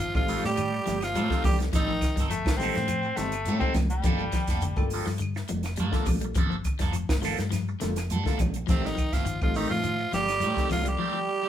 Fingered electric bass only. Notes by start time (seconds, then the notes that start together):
0.15 A1
0.44 A2
0.88 G1
1.16 A2
1.45 C2
1.74 A1
2.17 G1
2.46 A1
2.77 A2
3.18 G1
3.47 A2
3.75 C2
4.04 G1
4.48 F1
4.77 G1
5.07 G2
5.51 F1
5.79 G2
6.07 A#1
6.36 G1
6.80 F1
7.09 G1
7.38 G2
7.82 F1
8.12 G2
8.40 A#1
8.69 A1
9.13 G1
9.41 A1
9.70 A2
10.13 G1
10.40 A2
10.71 C2